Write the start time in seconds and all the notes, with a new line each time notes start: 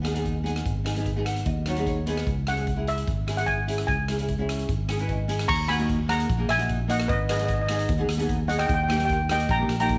Already playing: D#2
0.02 B3 D#4 G#4, cross-stick, closed hi-hat
0.13 B3 D#4 G#4, closed hi-hat
0.25 kick, closed hi-hat
0.43 B3 D#4 G#4, closed hi-hat
0.56 cross-stick, closed hi-hat
0.66 G#1, kick, closed hi-hat
0.84 B3 D#4 G#4, cross-stick, closed hi-hat
0.95 B3 D#4 G#4, closed hi-hat
1.06 kick, closed hi-hat
1.16 B3 D#4 G#4
1.25 F#5, cross-stick, closed hi-hat
1.36 closed hi-hat
1.46 D#2 D#5, kick, closed hi-hat
1.66 B3 D#4 F#4 C#5, cross-stick, closed hi-hat
1.76 B3 D#4 G#4, closed hi-hat
1.86 C#5, kick, closed hi-hat
2.06 B3 D#4 G#4 B4, closed hi-hat
2.17 cross-stick, closed hi-hat
2.27 C#2, kick, closed hi-hat
2.47 C#4 E4 G#4 F#5, cross-stick, closed hi-hat
2.56 C#4 E4 G#4, closed hi-hat
2.67 kick, closed hi-hat
2.76 C#4 E4 G#4
2.87 E5, closed hi-hat
2.98 closed hi-hat
3.07 G#1, kick, closed hi-hat
3.27 C#4 E4 G#4, cross-stick, closed hi-hat
3.37 C#4 E4 G#4 F#5, closed hi-hat
3.46 G#5, kick, closed hi-hat
3.67 C#4 E4 G#4, closed hi-hat
3.78 cross-stick, closed hi-hat
3.87 C#2 G#5, kick, closed hi-hat
4.08 C#4 E4 G#4, cross-stick, closed hi-hat
4.19 C#4 E4 G#4, closed hi-hat
4.28 kick, closed hi-hat
4.38 C#4 E4 G#4
4.49 cross-stick, closed hi-hat
4.59 closed hi-hat
4.69 G#1, kick, closed hi-hat
4.88 C#4 E4 G#4 G#5, cross-stick, closed hi-hat
4.99 C#4 E4 B4, closed hi-hat
5.08 D#5, kick, closed hi-hat
5.28 C#4 E4 G#4, closed hi-hat
5.39 cross-stick, closed hi-hat
5.48 D#2 A#5 C#6, kick, crash
5.67 A#3 D#4 F#4 G#5 B5, cross-stick, closed hi-hat
5.78 A#3 D#4 F#4, closed hi-hat
5.89 kick, closed hi-hat
6.08 A#3 D#4 G#4 F#5 A#5, cross-stick, closed hi-hat
6.20 closed hi-hat
6.30 A#1, kick, closed hi-hat
6.38 A#3 D#4 G#4
6.49 A#1 E5 G#5, cross-stick, closed hi-hat
6.57 A#3 D#4 F#4, closed hi-hat
6.69 kick, closed hi-hat
6.88 A#3 D#4 F#4 D#5 F#5, closed hi-hat
7.00 cross-stick, closed hi-hat
7.08 G#1 B4 D#5, kick, closed hi-hat
7.28 B3 D#4 G#4 B4 D#5, cross-stick, closed hi-hat
7.38 B3 D#4 G#4 D#5, closed hi-hat
7.45 D#5, closed hi-hat
7.49 kick
7.54 D#5
7.61 D#5
7.66 B3 D#4 G#4 D#5, cross-stick, closed hi-hat
7.76 D#5, closed hi-hat
7.89 D#2, kick, closed hi-hat
7.98 B3 D#4 G#4
8.08 D#2, cross-stick, closed hi-hat
8.17 B3 D#4 G#4, closed hi-hat
8.29 kick, closed hi-hat
8.47 B3 D#4 G#4 D#5 F#5, closed hi-hat
8.58 D#5 G5, cross-stick, closed hi-hat
8.66 D#2 G5, kick, closed hi-hat
8.74 G5
8.83 G5
8.88 A#3 D#4 G4 G5, cross-stick, closed hi-hat
8.97 A#3 D#4 G4 G5, closed hi-hat
9.05 G5
9.09 G5, kick, closed hi-hat
9.29 A#3 D#4 G4 D#5 G5, cross-stick, closed hi-hat
9.40 closed hi-hat
9.49 A#1 G5 A#5, kick, closed hi-hat
9.58 A#3 D#4 G4
9.68 A#1, cross-stick, closed hi-hat
9.79 A#3 D#4 G4 G5 A#5, closed hi-hat
9.89 kick, closed hi-hat